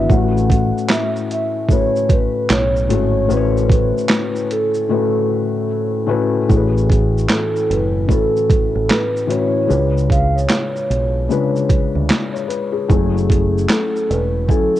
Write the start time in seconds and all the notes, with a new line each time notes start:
Already playing: E3 B3 D4 F#4 G#4 B4 E5
0.09 A1 A2 A3 C#4 F#4 B4 F#5, kick, shaker
0.37 shaker
0.50 kick, closed hi-hat, shaker
0.78 shaker
0.89 E5, finger snap, snare, clap, shaker
1.16 shaker
1.31 E5, closed hi-hat, shaker
1.69 A2 A3 C#4 F#4 B4 C#5, kick, shaker
1.96 shaker
2.09 B4, kick, closed hi-hat, shaker
2.50 B1 C#5, finger snap, snare, clap, shaker
2.76 shaker
2.88 G#1 A2 A3 C#4 F#4 A4, closed hi-hat, shaker
3.27 A1 A2 A3 C#4 F#4 C5, shaker
3.32 B4
3.37 C#5
3.57 shaker
3.70 kick, closed hi-hat, shaker
3.98 shaker
4.09 finger snap, snare, clap, shaker
4.36 shaker
4.51 A4, closed hi-hat, shaker
4.74 shaker
4.89 A2 A3 C#4 F#4 B4
6.07 A2 A3 C#4 F#4 B4
6.48 A1 A2 E3 C#4 F#4 G#4 A4, kick, shaker
6.57 B4
6.77 shaker
6.90 kick, closed hi-hat, shaker
7.18 shaker
7.29 A4, snare, clap, shaker
7.56 shaker
7.70 F#1 B4, closed hi-hat, shaker
8.08 A2 E3 C#4 F#4 A4 B4, kick, shaker
8.37 shaker
8.50 kick, closed hi-hat, shaker
8.75 A1
8.90 B4, snare, clap, shaker
9.17 shaker
9.27 A2 E3 C#4 F#4 B4, closed hi-hat, shaker
9.31 C#5
9.67 C#2 C#3 G#3 D4 F4 B4, shaker
9.98 shaker
10.10 F5, kick, closed hi-hat, shaker
10.36 C#5, shaker
10.49 snare, clap, shaker
10.76 shaker
10.90 B1, closed hi-hat, shaker
11.29 C#3 G#3 D4 F4 B4, shaker
11.56 shaker
11.69 kick, closed hi-hat, shaker
11.95 D2
12.10 snare, clap, shaker
12.34 C#5, shaker
12.48 B4, closed hi-hat, shaker
12.72 G#4
12.88 F#1 F#3 A3 C#4 E4 G#4, kick, shaker
13.18 shaker
13.30 kick, closed hi-hat, shaker
13.58 shaker
13.69 A4, snare, clap, shaker
13.96 shaker
14.10 E1 B4, closed hi-hat, shaker
14.48 F#3 C#4 E4 A4 G#5, kick, shaker
14.76 shaker